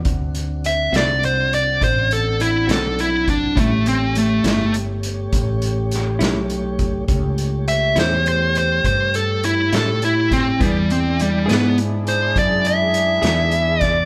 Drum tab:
HH |xxxxxxxxxxxx|xxxxxxxxxxxx|xxxxxxxxxxxx|xxxxxxxxxxxx|
SD |---o-----o--|---o----oo--|---o-----o-o|---o-----o-o|
BD |o-----o----o|o-----o----o|o-----o----o|o-----o----o|